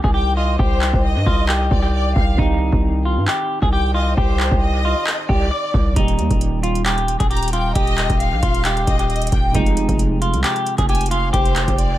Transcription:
Already playing: grand piano D#3 C4 D#4 G4
0.04 808-style bass C2, clean electric guitar G#4, kick
0.14 clean electric guitar G4, violin section G5
0.37 clean electric guitar F4, violin section D#5
0.59 808-style bass C2, clean electric guitar G4, violin section C5, kick
0.82 clap
0.93 808-style bass C2, kick
1.04 violin section D#5
1.16 808-style bass G2
1.26 808-style bass C2, clean electric guitar F4, kick
1.49 clean electric guitar G4, clap
1.71 808-style bass C2, violin section D5, kick
1.83 clean electric guitar G4
1.93 violin section D5
2.16 808-style bass C2, violin section F5, kick
2.36 808-style bass C2, grand piano D#3 C4 D#4, clean electric guitar D#4, kick
2.41 grand piano G4
2.72 808-style bass C2, kick
3.05 clean electric guitar F4
3.17 808-style bass G2
3.28 clean electric guitar G4, clap
3.62 808-style bass C2, clean electric guitar G#4, kick
3.73 clean electric guitar G4, violin section G5
3.94 clean electric guitar F4, violin section D#5
4.17 808-style bass C2, clean electric guitar G4, violin section C5, kick
4.40 clap
4.51 808-style bass C2, kick
4.62 violin section D#5
4.85 clean electric guitar F4
5.07 clap
5.29 808-style bass C2, clean electric guitar G4, violin section D5, kick
5.51 clean electric guitar D5
5.74 808-style bass C2, kick
5.94 808-style bass D#1, grand piano D#3 G3 A#3, clean electric guitar D#4, kick, closed hi-hat
5.99 grand piano G4
6.08 closed hi-hat
6.19 808-style bass D#2, closed hi-hat
6.31 808-style bass D#1, kick, closed hi-hat
6.41 closed hi-hat
6.63 clean electric guitar F4, closed hi-hat
6.75 closed hi-hat
6.86 clean electric guitar G4, clap, closed hi-hat
6.98 closed hi-hat
7.08 closed hi-hat
7.20 808-style bass D#1, clean electric guitar G#4, kick, closed hi-hat
7.30 clean electric guitar G4, violin section A#5, closed hi-hat
7.37 closed hi-hat
7.43 closed hi-hat
7.48 closed hi-hat
7.53 clean electric guitar F4, violin section G5, closed hi-hat
7.75 808-style bass D#1, clean electric guitar G4, violin section D#5, kick, closed hi-hat
7.87 closed hi-hat
7.98 clap, closed hi-hat
8.10 808-style bass D#1, kick, closed hi-hat
8.20 violin section F5, closed hi-hat
8.32 808-style bass A#1
8.43 808-style bass D#1, clean electric guitar F4, kick, closed hi-hat
8.54 closed hi-hat
8.65 clean electric guitar G4, clap, closed hi-hat
8.77 closed hi-hat
8.87 808-style bass D#1, violin section D#5, kick, closed hi-hat
8.99 clean electric guitar G4, closed hi-hat
9.10 violin section D#5, closed hi-hat
9.16 closed hi-hat
9.22 closed hi-hat
9.27 closed hi-hat
9.32 808-style bass D#1, violin section G5, kick, closed hi-hat
9.52 808-style bass F1, grand piano C3 F3 G#3, clean electric guitar D#4, kick, closed hi-hat
9.57 grand piano F4
9.66 closed hi-hat
9.77 closed hi-hat
9.89 808-style bass F1, kick, closed hi-hat
9.99 closed hi-hat
10.22 clean electric guitar F4, closed hi-hat
10.34 808-style bass C2, closed hi-hat
10.44 clean electric guitar G4, clap, closed hi-hat
10.56 closed hi-hat
10.66 closed hi-hat
10.78 808-style bass F1, clean electric guitar G#4, kick, closed hi-hat
10.89 clean electric guitar G4, violin section G#5, closed hi-hat
10.95 closed hi-hat
11.01 closed hi-hat
11.06 closed hi-hat
11.11 clean electric guitar F4, violin section F5, closed hi-hat
11.33 808-style bass F1, clean electric guitar G4, violin section C5, kick, closed hi-hat
11.46 closed hi-hat
11.56 clap, closed hi-hat
11.68 808-style bass F1, kick, closed hi-hat
11.78 violin section D5, closed hi-hat

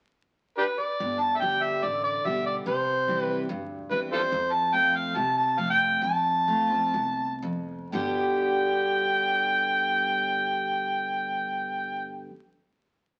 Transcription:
0.58 harmonica D4 G4 B4
0.79 harmonica D5
1.00 upright bass G1, steel-string acoustic guitar G2
1.20 harmonica A5
1.36 harmonica E5
1.41 steel-string acoustic guitar D3 G3 B3 G4, harmonica G5
1.62 harmonica E5
1.83 upright bass A1, steel-string acoustic guitar D3, harmonica D5
2.04 harmonica D5
2.25 upright bass B1, steel-string acoustic guitar D3 G3 B3 G4, harmonica E5
2.46 harmonica D5
2.66 upright bass C2, steel-string acoustic guitar C3, harmonica C5
3.07 steel-string acoustic guitar E3 G3 C4 E4
3.21 harmonica B4
3.49 upright bass D2, steel-string acoustic guitar G2
3.91 upright bass E2, steel-string acoustic guitar E3 G3 C4 E4, harmonica B4
4.12 harmonica F4 A4 C5
4.32 steel-string acoustic guitar F2, upright bass F2
4.53 harmonica A5
4.73 steel-string acoustic guitar F3 A3 C4 F4, harmonica G5
4.96 harmonica F5
5.15 upright bass C2, steel-string acoustic guitar C3, harmonica A5
5.38 harmonica A5
5.57 steel-string acoustic guitar F3 A3 C4 F4, harmonica F5
5.70 harmonica G5
6.02 steel-string acoustic guitar F2, upright bass F2, harmonica A5
6.47 steel-string acoustic guitar F3 A3 C4 F4
6.70 steel-string acoustic guitar C4 F4
6.94 upright bass C2, steel-string acoustic guitar E2
7.42 steel-string acoustic guitar F2
7.92 upright bass G1, steel-string acoustic guitar G2 B2 D3 G3 B3 G4, harmonica G5

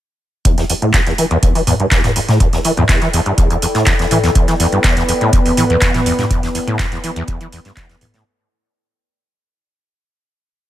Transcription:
0.45 acid bass E2, ambient pad E4, kick, closed hi-hat
0.55 acid bass E2, ambient pad A4, snare, closed hi-hat
0.70 acid bass E2, closed hi-hat, open hi-hat
0.82 acid bass A2, closed hi-hat
0.94 acid bass E2, kick, snare, clap, closed hi-hat
1.06 acid bass E2, snare, closed hi-hat
1.11 ambient pad D5
1.18 acid bass E3, closed hi-hat, open hi-hat
1.31 acid bass E2, closed hi-hat
1.43 acid bass E2, kick, closed hi-hat
1.55 acid bass E3, open hi-hat
1.67 acid bass E2, closed hi-hat, mid tom, open hi-hat
1.80 acid bass G2, closed hi-hat
1.85 ambient pad G5
1.91 acid bass E2, kick, snare, clap, closed hi-hat
2.04 acid bass E2, snare, closed hi-hat, mid tom
2.16 acid bass E2, closed hi-hat, open hi-hat
2.29 acid bass A2, snare, closed hi-hat, mid tom
2.40 acid bass E2, kick, closed hi-hat
2.53 acid bass E2, snare, closed hi-hat
2.64 acid bass E3, closed hi-hat, open hi-hat
2.77 acid bass E2, closed hi-hat, mid tom
2.89 acid bass E2, kick, snare, clap, closed hi-hat
3.01 acid bass E3, snare, closed hi-hat
3.13 acid bass E2, closed hi-hat, open hi-hat
3.26 acid bass G2, closed hi-hat
3.38 acid bass E2, kick, closed hi-hat
3.50 acid bass E2, closed hi-hat
3.62 acid bass E2, closed hi-hat, open hi-hat
3.75 acid bass A2, snare, closed hi-hat
3.86 acid bass E2, kick, snare, clap, closed hi-hat
3.99 acid bass E2, snare, closed hi-hat
4.11 acid bass E3, closed hi-hat, mid tom, open hi-hat
4.24 acid bass E2, snare, closed hi-hat
4.35 acid bass E2, analog synth pad B3 B4, kick, closed hi-hat
4.47 acid bass E3, snare, closed hi-hat
4.60 acid bass E2, closed hi-hat, open hi-hat
4.72 acid bass G2, closed hi-hat
4.84 acid bass E2, kick, snare, clap, closed hi-hat
4.97 acid bass E2, snare, closed hi-hat
5.09 acid bass E2, closed hi-hat, open hi-hat
5.21 acid bass A2, closed hi-hat
5.33 acid bass E2, kick, closed hi-hat
5.46 acid bass E2, open hi-hat
5.57 acid bass E3, closed hi-hat, mid tom, open hi-hat
5.70 acid bass E2, closed hi-hat
5.81 acid bass E2, kick, snare, clap, closed hi-hat
5.94 acid bass E3, snare, closed hi-hat, mid tom
6.06 acid bass E2, closed hi-hat, open hi-hat
6.19 acid bass G2, snare, closed hi-hat, mid tom
6.30 acid bass E2, kick, closed hi-hat
6.43 acid bass E2, snare, closed hi-hat
6.55 acid bass E2, closed hi-hat, open hi-hat
6.67 acid bass A2, closed hi-hat, mid tom
6.79 acid bass E2, kick, snare, clap, closed hi-hat
6.92 acid bass E2, snare, closed hi-hat
7.04 acid bass E3, closed hi-hat, open hi-hat
7.16 acid bass E2, closed hi-hat
7.28 acid bass E2, kick, closed hi-hat
7.41 acid bass E3, closed hi-hat
7.52 acid bass E2, closed hi-hat, open hi-hat
7.64 acid bass G2, snare, closed hi-hat
7.77 acid bass E2, kick, snare, clap, closed hi-hat
7.89 acid bass E2, snare, closed hi-hat
8.01 acid bass E2, closed hi-hat, mid tom, open hi-hat
8.14 acid bass A2, snare, closed hi-hat

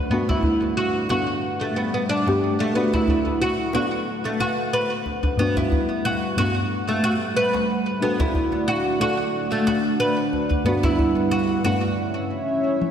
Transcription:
Already playing: synth stab A3 D4 F#4 A4, analog synth pad A3 D4 F#5
0.09 synth stab G2 A3 B3 D4 F#4, analog synth pad G3 B4, oud B3
0.29 oud E4, djembe slap, djembe tone, djembe bass
0.43 djembe bass
0.62 djembe tone
0.77 oud F#4
1.09 synth stab G2 A3 B3 D4 F#4, oud F#4, djembe slap
1.61 oud A3
1.76 oud B3
1.94 oud B3
2.09 oud D4
2.26 synth stab G2 A3 B3 D4 G4, djembe slap
2.60 oud A3
2.73 synth stab A3 B3 D4, oud B3, analog synth pad F#4
2.77 synth stab F#4
2.93 oud E4, djembe slap, djembe tone, djembe bass
3.08 djembe bass
3.26 djembe tone
3.42 oud F#4
3.73 synth stab A3 B3 D4 F#4, oud F#4, djembe slap
4.25 oud A3
4.40 oud F#4, djembe slap
4.73 oud B4
5.06 djembe tone
5.23 djembe bass
5.36 synth stab G2 A3 B3 D4, analog synth pad G3 A3 F#5, oud B3
5.41 synth stab F#4
5.57 oud E4, djembe slap, djembe tone, djembe bass
5.72 djembe bass
5.90 djembe tone
6.05 oud F#4
6.36 synth stab G2 A3 B3 D4 F#4, oud F#4, djembe slap
6.89 oud A3
7.04 oud F#4
7.36 oud B4
7.54 djembe slap
8.00 synth stab A3 D4 F#4 A4, oud B3, analog synth pad D4 F#4 D5
8.20 oud E4, djembe slap, djembe tone, djembe bass
8.35 djembe bass
8.53 djembe tone
8.68 oud F#4
9.00 synth stab A3 D4 F#4 A4, oud F#4, djembe slap
9.52 oud A3
9.67 oud F#4, djembe slap
10.00 oud B4
10.33 djembe tone
10.51 djembe bass
10.63 synth stab G2 A3 B3 D4, analog synth pad G3 B4 F#5, oud B3
10.68 synth stab F#4
10.83 oud E4, djembe slap, djembe tone, djembe bass
10.99 djembe bass
11.17 djembe tone
11.31 oud F#4
11.64 synth stab G2 A3 B3 D4 F#4, oud F#4, djembe slap
11.98 analog synth pad C#4 E4 C#5 E5
12.82 high tom

